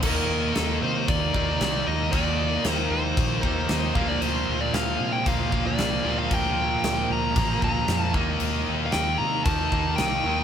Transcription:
0.03 fingered electric bass D#2, overdriven electric guitar D#3 A#3 D#4, lead electric guitar A#4, kick, crash
0.30 fingered electric bass D#2
0.55 fingered electric bass D#2, lead electric guitar A4, snare, crash
0.82 fingered electric bass C3, lead electric guitar C5
1.08 fingered electric bass D#2, lead electric guitar D5, kick, crash
1.34 fingered electric bass D#2, overdriven electric guitar D#3 A#3 D#4, kick
1.61 fingered electric bass C2, overdriven electric guitar D#3 A#3 D#4, snare, crash
1.86 fingered electric bass D#2, distorted electric guitar D#3 A#3 D#4, lead electric guitar D#5
2.12 fingered electric bass D#2, overdriven electric guitar D#3 A#3 D#4, lead electric guitar D5, kick, crash
2.64 fingered electric bass D#2, snare, crash
2.71 lead electric guitar C5
2.90 fingered electric bass D#2, lead electric guitar C5
3.17 fingered electric bass A#1, kick, crash
3.42 fingered electric bass D#2, overdriven electric guitar D#3 A#3 D#4, kick
3.68 fingered electric bass D#2, overdriven electric guitar D#3 A#3 D#4, snare, crash
3.94 fingered electric bass D2, overdriven electric guitar A#2 F3 A#3, lead electric guitar F5, kick
4.08 lead electric guitar D5
4.21 fingered electric bass D2, lead electric guitar C5, crash
4.48 fingered electric bass D2
4.61 lead electric guitar D5
4.74 fingered electric bass D2, lead electric guitar F5, snare, crash
5.00 fingered electric bass C3
5.12 lead electric guitar G5
5.26 fingered electric bass D2, overdriven electric guitar A#2 F3 A#3, lead electric guitar F5, kick, crash
5.52 fingered electric bass D2, overdriven electric guitar A#2 F3 A#3, kick
5.67 lead electric guitar D5
5.78 fingered electric bass C2, distorted electric guitar A#2 F3 A#3, snare, crash
6.05 fingered electric bass D2, overdriven electric guitar A#2 F3 A#3
6.19 lead electric guitar F5
6.31 fingered electric bass D2, lead electric guitar G5, kick, crash
6.83 fingered electric bass D2, snare, crash
7.10 fingered electric bass D2, lead electric guitar A#5
7.36 fingered electric bass A1, overdriven electric guitar A#2 F3 A#3, kick, crash
7.62 fingered electric bass D2, overdriven electric guitar A#2 F3 A#3, lead electric guitar A#5, kick
7.87 fingered electric bass F2, distorted electric guitar A#2 F3 A#3, snare, crash
7.99 lead electric guitar A5
8.14 fingered electric bass D#2, overdriven electric guitar D#3 A#3 D#4, kick
8.40 fingered electric bass D#2, crash
8.68 fingered electric bass D#2
8.86 lead electric guitar F5
8.92 fingered electric bass D#2, lead electric guitar G5, snare, crash
9.18 fingered electric bass C3, lead electric guitar A#5
9.44 fingered electric bass D#2, overdriven electric guitar D#3 A#3, lead electric guitar A5, kick, crash
9.49 overdriven electric guitar D#4
9.72 fingered electric bass D#2, overdriven electric guitar D#3 A#3 D#4, kick
9.96 fingered electric bass C2, distorted electric guitar D#3 A#3, lead electric guitar G5, snare, crash
10.00 distorted electric guitar D#4
10.24 fingered electric bass D#2, overdriven electric guitar D#3 A#3 D#4

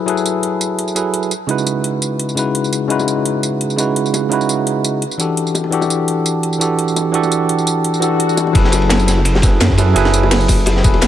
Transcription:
Already playing: tine electric piano F#3 E4 G#4 A4 B4
0.06 tine electric piano F#3 E4 G#4 A4 B4, closed hi-hat
0.17 tambourine
0.26 closed hi-hat, tambourine
0.43 closed hi-hat
0.61 closed hi-hat, tambourine
0.79 closed hi-hat
0.88 tambourine
0.95 tine electric piano F#3 E4 G#4 A4 B4, closed hi-hat, tambourine
1.14 closed hi-hat
1.23 tambourine
1.31 closed hi-hat, tambourine
1.47 tine electric piano C#3 G#3 D#4 E4 F#4 B4, closed hi-hat
1.58 tambourine
1.67 closed hi-hat, tambourine
1.84 closed hi-hat
2.02 closed hi-hat, tambourine
2.19 closed hi-hat
2.29 tambourine
2.35 tine electric piano C#3 G#3 D#4 E4 F#4 B4, closed hi-hat, tambourine
2.55 closed hi-hat
2.64 tambourine
2.73 closed hi-hat, tambourine
2.88 tine electric piano C#3 G#3 D#4 E4 F#4 B4, closed hi-hat
2.99 tambourine, high bongo
3.08 closed hi-hat, tambourine
3.25 closed hi-hat
3.43 closed hi-hat, tambourine
3.61 closed hi-hat
3.70 tambourine
3.76 tine electric piano C#3 G#3 D#4 E4 F#4 B4, closed hi-hat, tambourine
3.96 closed hi-hat
4.06 tambourine
4.14 closed hi-hat, tambourine, high bongo
4.29 tine electric piano C#3 G#3 D#4 E4 F#4 B4, closed hi-hat
4.41 tambourine
4.49 closed hi-hat, tambourine
4.67 closed hi-hat
4.84 closed hi-hat, tambourine
5.02 closed hi-hat
5.11 tambourine
5.18 tine electric piano E3 D4 F#4 G4 A4, closed hi-hat, tambourine
5.37 closed hi-hat
5.47 tambourine
5.55 closed hi-hat, tambourine, high bongo
5.64 high bongo
5.71 tine electric piano E3 D4 F#4 G4 A4, closed hi-hat
5.82 tambourine, high bongo
5.90 closed hi-hat, tambourine
6.08 closed hi-hat
6.26 closed hi-hat, tambourine
6.43 closed hi-hat
6.53 tambourine
6.59 tine electric piano E3 D4 F#4 G4 A4, closed hi-hat, tambourine
6.79 closed hi-hat
6.88 tambourine
6.96 closed hi-hat, tambourine, high bongo
7.12 tine electric piano E3 D4 F#4 G4 A4, closed hi-hat
7.23 tambourine, high bongo
7.32 closed hi-hat, tambourine
7.49 closed hi-hat
7.58 tambourine
7.67 closed hi-hat, tambourine
7.84 closed hi-hat, swell
7.94 tambourine
8.00 tine electric piano E3 D4 F#4 G4 A4, closed hi-hat, tambourine
8.20 closed hi-hat
8.29 tambourine
8.37 closed hi-hat, tambourine, high bongo
8.47 high bongo
8.53 detuned saw bass F#1, tine electric piano F#3 E4 G#4 A4 B4, kick, closed hi-hat, ride
8.64 snare
8.72 closed hi-hat, ride, tambourine, high bongo
8.82 ride
8.90 snare, closed hi-hat, ride, high bongo
8.99 ride, tambourine
9.07 snare, closed hi-hat, ride, tambourine
9.18 high bongo
9.25 closed hi-hat, ride
9.35 snare, high bongo
9.42 tine electric piano F#3 E4 G#4 A4 B4, kick, snare, closed hi-hat, ride, tambourine
9.60 detuned saw bass F#2, snare, closed hi-hat, ride, high bongo
9.70 kick, snare
9.77 tine electric piano F#3 E4 G#4 A4 B4, closed hi-hat, ride, tambourine, high bongo
9.94 detuned saw bass F#1, tine electric piano F#3 E4 G#4 A4 B4, closed hi-hat, ride
10.05 snare, high bongo
10.14 closed hi-hat, ride, tambourine
10.23 high bongo
10.31 snare, closed hi-hat, open hi-hat
10.41 tambourine
10.48 kick, open hi-hat, ride, tambourine, high bongo
10.66 closed hi-hat, ride, high bongo
10.76 snare
10.83 detuned saw bass E1, tine electric piano F#3 E4 G#4 A4 B4, kick, closed hi-hat, ride, tambourine
10.94 ride, high bongo
11.01 detuned saw bass F#1, snare, closed hi-hat, ride

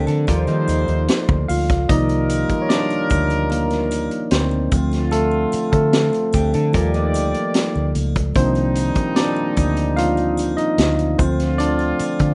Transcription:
Already playing: tine electric piano F3 A3 C4 D4 A4 A#4 C5 D5
0.07 fingered electric bass D3, clean electric guitar D4 A4, closed hi-hat, muted triangle
0.27 fingered electric bass D#2, tine electric piano F3 G3 D5, horn section G3 D#4 C5, clean electric guitar F4 A#4, kick, closed hi-hat, muted triangle
0.47 fingered electric bass D#3, clean electric guitar A#3 D#4, closed hi-hat, muted triangle
0.68 fingered electric bass D#2, closed hi-hat, triangle
0.88 fingered electric bass D#2, closed hi-hat, muted triangle
1.08 snare, closed hi-hat, muted triangle
1.29 fingered electric bass D2, kick, muted triangle
1.48 fingered electric bass D2, tine electric piano F4 F5, open hi-hat, triangle
1.70 fingered electric bass C#2, kick, snare, closed hi-hat, muted triangle
1.89 fingered electric bass C2, tine electric piano D#3 F3 A#3 D#4 D5 D#5, horn section G3 F4 A#4, kick, closed hi-hat, muted triangle
2.09 closed hi-hat, muted triangle
2.29 closed hi-hat, triangle
2.49 kick, closed hi-hat, muted triangle
2.62 tine electric piano C#5
2.69 tine electric piano D4 D5, snare, closed hi-hat, muted triangle
2.91 closed hi-hat, muted triangle
3.10 fingered electric bass D2, kick, closed hi-hat, triangle
3.30 closed hi-hat, muted triangle
3.50 tine electric piano A#3 A#4, closed hi-hat, muted triangle
3.70 snare, closed hi-hat, muted triangle
3.91 closed hi-hat, triangle
4.11 closed hi-hat, muted triangle
4.31 fingered electric bass D2, tine electric piano C4 C5, snare, closed hi-hat, muted triangle
4.51 muted triangle
4.71 fingered electric bass D2, horn section D3 C4 F4, tine electric piano F3 A3 C4, kick, closed hi-hat, triangle
4.92 snare, closed hi-hat, muted triangle
5.11 tine electric piano A3 A4, closed hi-hat, muted triangle
5.31 muted triangle
5.52 muted fingered electric bass stroke, closed hi-hat, triangle
5.72 fingered electric bass D3, tine electric piano A3 A4, kick, closed hi-hat, muted triangle
5.93 snare, closed hi-hat, muted triangle
6.13 closed hi-hat, muted triangle
6.33 fingered electric bass D2, clean electric guitar D4 G4, kick, closed hi-hat, triangle
6.54 fingered electric bass D3, clean electric guitar D4 A4, closed hi-hat, muted triangle
6.73 fingered electric bass D#2, horn section D#3 G4 D5, tine electric piano F3 G3 D5, clean electric guitar F4 A#4, kick, closed hi-hat, muted triangle
6.94 clean electric guitar A#3 D#4, closed hi-hat, muted triangle
7.14 fingered electric bass D2, closed hi-hat, triangle
7.34 closed hi-hat, muted triangle
7.54 snare, closed hi-hat, muted triangle
7.76 fingered electric bass D2, muted triangle
7.95 fingered electric bass C#2, closed hi-hat, triangle
8.16 kick, closed hi-hat, muted triangle
8.35 fingered electric bass C2, horn section A#2 G3 D#4, tine electric piano D#3 F3 A#3 C4 D4 C5, kick, closed hi-hat, muted triangle
8.55 closed hi-hat, muted triangle
8.75 closed hi-hat, triangle
8.95 kick, closed hi-hat, muted triangle
9.16 tine electric piano D4 D5, snare, closed hi-hat, muted triangle
9.36 muted triangle
9.57 fingered electric bass D2, kick, closed hi-hat, triangle
9.77 closed hi-hat, muted triangle
9.96 tine electric piano F3 A#3 D4 D#4 F4 F5, closed hi-hat, muted triangle
10.17 closed hi-hat, muted triangle
10.37 closed hi-hat, triangle
10.57 tine electric piano D#4 D#5, closed hi-hat, muted triangle
10.78 fingered electric bass D2, snare, closed hi-hat, muted triangle
10.99 closed hi-hat, muted triangle
11.18 fingered electric bass D2, horn section D3 C4 F4, tine electric piano F3 A3 C4 C5, kick, closed hi-hat, triangle
11.40 snare, closed hi-hat, muted triangle
11.58 tine electric piano D4 D5, closed hi-hat, muted triangle
11.79 closed hi-hat, muted triangle
11.99 muted fingered electric bass stroke, closed hi-hat, triangle
12.19 fingered electric bass D3, kick, closed hi-hat, muted triangle

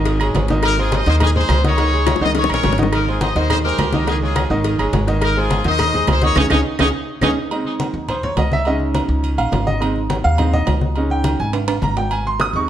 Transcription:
Already playing: upright bass G#1, grand piano D#3 D#4 D#5
0.05 cowbell, high conga, low agogo
0.20 grand piano G#3 G#4 C#5, high conga, low agogo, claves
0.34 upright bass G#1, grand piano G#3 G#4 C#5, cowbell, high conga, low timbale, low agogo
0.48 grand piano D#3 D#4 D#5, cowbell, high conga
0.63 horn section D#4 A#4, cowbell, high conga, low agogo, claves
0.78 grand piano G#3 G#4 C5, horn section F4 G#4, high conga
0.92 horn section C5 D#5, cowbell, high conga, low timbale, low agogo
1.06 upright bass D#2, grand piano D#3 D#4 D#5, horn section G#4 C5, cowbell, high conga
1.20 horn section D#4 G#4, cowbell, high conga, low conga, low agogo, claves
1.35 grand piano G#3 G#4 C5, horn section G#4 C5, high conga, low conga
1.49 upright bass C#2, cowbell, high conga, low timbale, low agogo, claves
1.64 grand piano D#3 D#4 D#5, horn section G#4 C#5, cowbell, high conga
1.77 grand piano D#3 D#4 D#5, cowbell, high conga, low agogo
1.93 grand piano G#3 G#4 C#5, high conga
2.06 cowbell, high bongo, high conga, low timbale, low agogo, claves
2.16 high bongo
2.21 upright bass C#2, grand piano D#3 D#4 D#5, horn section C5 D#5, high conga
2.26 low bongo
2.35 horn section G#4 C#5, cowbell, low bongo, high conga, low agogo
2.44 low bongo
2.49 upright bass A#1, grand piano G#3 G#4 C#5, horn section A#4 C#5, high conga, low agogo, claves
2.54 low bongo
2.63 upright bass G#1, grand piano G#3 G#4 C#5, cowbell, low bongo, high conga, low timbale, low agogo
2.72 low bongo
2.78 grand piano D#3 D#4 D#5, cowbell, high conga
2.83 low bongo
2.92 horn section D#4 A#4, cowbell, high conga, low agogo, claves
3.07 grand piano G#3 G#4 C5, horn section F4 G#4, high conga
3.21 horn section C5 D#5, cowbell, high conga, low timbale, low agogo
3.36 upright bass D#2, grand piano D#3 D#4 D#5, horn section G#4 C5, cowbell, high conga
3.50 horn section G#4 C5, cowbell, high conga, low conga, low agogo, claves
3.64 grand piano G#3 G#4 C5, horn section G4 A#4, high conga
3.78 upright bass C#2, cowbell, high conga, low timbale, low agogo, claves
3.93 grand piano D#3 D#4 D#5, cowbell, high conga
4.07 grand piano D#3 D#4 D#5, horn section D#4 G#4, cowbell, high conga, low agogo
4.22 grand piano G#3 G#4 C#5, horn section F4 G#4, high conga
4.36 cowbell, high conga, low timbale, low agogo, claves
4.50 upright bass G#1, grand piano D#3 D#4 D#5, high conga
4.64 cowbell, high conga, low agogo
4.79 upright bass G1, grand piano G#3 G#4 C#5, high conga, low agogo, claves
4.93 upright bass G#1, grand piano G#3 G#4 C#5, cowbell, high conga, low timbale, low agogo
5.07 grand piano D#3 D#4 D#5, cowbell
5.21 horn section D#4 A#4, cowbell, high conga, low agogo, claves
5.36 grand piano G#3 G#4 C5, horn section F4 G#4, high conga
5.50 cowbell, high conga, low timbale, low agogo
5.64 upright bass D#2, grand piano D#3 D#4 D#5, horn section C5 D#5, cowbell, high conga
5.79 cowbell, high conga, low conga, low agogo, claves
5.94 grand piano G#3 G#4 C5, high conga, low conga
6.07 upright bass C#2, horn section G#4 C5, cowbell, high conga, low timbale, low agogo, claves
6.22 grand piano D#3 D#4 D#5, horn section G#4 C#5, cowbell, high conga
6.36 upright bass C#2, grand piano C#4 D#4 G#4, horn section D#4 G#4 C#5, cowbell, high conga, high timbale, claves
6.50 upright bass C#2, grand piano C#4 D#4 G#4, horn section D#4 G#4 C#5, cowbell, high conga, high timbale, claves
6.79 upright bass C#2, grand piano C#4 D#4 G#4, horn section D#4 G#4 C#5, cowbell, high conga, high timbale, claves
7.21 upright bass C#2, grand piano C#4 D#4 G#4, horn section D#4 G#4 C#5, cowbell, high conga, high timbale, claves
7.51 grand piano G#3 C4 D#4, high conga, low agogo
7.65 high conga
7.80 high conga, low timbale, low agogo
7.94 upright bass D#2, high conga
8.09 grand piano C5, high conga, low conga, low agogo
8.23 grand piano C#5, high conga, low conga
8.37 upright bass C#2, grand piano D#5, high conga, low timbale, low agogo
8.52 grand piano E5, high conga
8.65 grand piano G#3 C#4 D#4 D#5, high conga, low agogo
8.80 high conga
8.95 high conga, low timbale, low agogo
9.09 upright bass C#2, high conga
9.23 high conga, low agogo
9.38 upright bass A#1, grand piano F5, high conga, low agogo
9.52 upright bass G#1, high conga, low timbale, low agogo
9.67 grand piano D#5, high conga
9.80 grand piano G#3 C4 D#4, high conga, low agogo
9.96 high conga
10.10 high conga, low timbale, low agogo
10.24 upright bass D#2, grand piano F5, high conga
10.38 grand piano G#3 C4 D#4, high conga, low conga, low agogo
10.54 grand piano D#5, high conga, low conga
10.67 upright bass C#2, high conga, low timbale, low agogo
10.81 high conga
10.96 grand piano G#3 C#4 D#4, high conga, low agogo
11.10 grand piano G5, high conga
11.24 high conga, low timbale, low agogo
11.39 upright bass G#1, grand piano G#5, high conga
11.53 high conga, high timbale, low agogo
11.68 high conga, high timbale, low agogo
11.82 upright bass G#1, grand piano A#5, high conga, low agogo
11.97 grand piano G5, low timbale
12.11 grand piano G#5, high conga, low agogo
12.25 grand piano C6, high conga
12.40 grand piano D#6, high conga, low timbale, low agogo
12.53 upright bass D#2, grand piano G#3 C4 D#4 C#6, high conga

